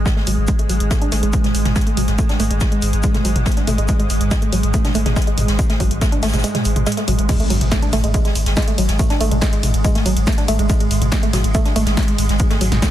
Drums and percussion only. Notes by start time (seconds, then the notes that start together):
0.06 kick, snare, shaker
0.17 snare
0.27 open hi-hat, shaker
0.48 kick, closed hi-hat, shaker
0.59 closed hi-hat
0.69 open hi-hat, shaker
0.80 closed hi-hat
0.91 kick, snare, closed hi-hat, shaker
1.02 closed hi-hat
1.12 snare, open hi-hat, shaker
1.23 closed hi-hat
1.33 kick, closed hi-hat, shaker
1.44 snare, closed hi-hat, mid tom
1.55 open hi-hat, shaker
1.65 snare, closed hi-hat, mid tom
1.76 kick, snare, closed hi-hat, shaker
1.81 closed hi-hat
1.86 closed hi-hat
1.97 mid tom, open hi-hat, shaker
2.08 snare, closed hi-hat
2.18 kick, closed hi-hat, shaker
2.29 snare, closed hi-hat
2.40 open hi-hat, shaker
2.51 closed hi-hat
2.60 kick, snare, closed hi-hat, shaker
2.72 closed hi-hat
2.82 open hi-hat, shaker
2.93 closed hi-hat
3.03 kick, closed hi-hat, shaker
3.14 snare, closed hi-hat, mid tom
3.25 open hi-hat, shaker
3.36 closed hi-hat, mid tom
3.46 kick, snare, closed hi-hat, shaker
3.52 closed hi-hat
3.57 snare, closed hi-hat
3.67 mid tom, open hi-hat, shaker
3.78 closed hi-hat
3.88 kick, closed hi-hat, shaker
4.00 closed hi-hat
4.10 open hi-hat, shaker
4.21 closed hi-hat
4.31 kick, snare, closed hi-hat, shaker
4.42 closed hi-hat
4.53 open hi-hat, shaker
4.63 closed hi-hat
4.74 kick, closed hi-hat, shaker
4.85 snare, closed hi-hat, mid tom
4.94 open hi-hat, shaker
5.06 snare, closed hi-hat, mid tom
5.16 kick, snare, closed hi-hat, shaker
5.22 closed hi-hat
5.27 closed hi-hat
5.38 mid tom, open hi-hat, shaker
5.48 snare, closed hi-hat
5.59 kick, closed hi-hat, shaker
5.70 snare, closed hi-hat
5.80 kick, open hi-hat, shaker
5.91 closed hi-hat
6.01 kick, snare, closed hi-hat, shaker
6.12 closed hi-hat
6.23 snare, open hi-hat, shaker
6.28 snare, shaker
6.33 snare, closed hi-hat, mid tom, shaker
6.38 snare, shaker
6.44 closed hi-hat, shaker
6.55 snare, closed hi-hat, mid tom
6.65 open hi-hat, shaker
6.76 closed hi-hat, mid tom
6.87 snare, closed hi-hat, shaker
6.92 closed hi-hat
6.97 snare, closed hi-hat
7.08 mid tom, open hi-hat, shaker
7.19 closed hi-hat
7.29 kick, closed hi-hat, crash, ride, shaker
7.40 closed hi-hat, ride
7.50 open hi-hat, ride, shaker
7.61 closed hi-hat, mid tom, ride
7.72 kick, snare, closed hi-hat, ride, shaker
7.82 closed hi-hat, ride
7.92 snare, mid tom, open hi-hat, ride, shaker
8.04 closed hi-hat, ride
8.14 kick, closed hi-hat, ride, shaker
8.25 snare, closed hi-hat, ride
8.35 open hi-hat, ride, shaker
8.46 snare, closed hi-hat, ride
8.56 kick, snare, closed hi-hat, ride, shaker
8.62 closed hi-hat
8.68 closed hi-hat, ride
8.78 open hi-hat, ride, shaker
8.88 snare, closed hi-hat, ride
8.99 kick, closed hi-hat, ride, shaker
9.10 snare, closed hi-hat, ride
9.21 open hi-hat, ride, shaker
9.31 closed hi-hat, mid tom, ride
9.41 kick, snare, closed hi-hat, ride, shaker
9.53 closed hi-hat, ride
9.63 mid tom, open hi-hat, ride, shaker
9.74 closed hi-hat, ride
9.84 kick, closed hi-hat, ride, shaker
9.95 snare, closed hi-hat, ride
10.06 open hi-hat, ride, shaker
10.17 closed hi-hat, ride
10.27 kick, snare, closed hi-hat, ride, shaker
10.32 closed hi-hat
10.38 snare, closed hi-hat, ride
10.48 open hi-hat, ride, shaker
10.59 closed hi-hat, ride
10.70 kick, closed hi-hat, ride, shaker
10.80 closed hi-hat, ride
10.91 open hi-hat, ride, shaker
11.02 closed hi-hat, mid tom, ride
11.12 kick, snare, closed hi-hat, ride, shaker
11.23 closed hi-hat, ride
11.33 snare, mid tom, open hi-hat, ride, shaker
11.44 closed hi-hat, ride
11.55 kick, closed hi-hat, ride, shaker
11.65 snare, closed hi-hat, ride
11.76 open hi-hat, ride, shaker
11.86 snare, closed hi-hat, ride
11.97 kick, snare, closed hi-hat, ride, shaker
12.03 closed hi-hat
12.08 closed hi-hat, ride
12.18 open hi-hat, ride, shaker
12.29 snare, closed hi-hat, ride
12.39 kick, closed hi-hat, ride, shaker
12.51 snare, closed hi-hat, ride
12.61 open hi-hat, ride, shaker
12.72 snare, closed hi-hat, mid tom, ride
12.82 kick, snare, closed hi-hat, ride, shaker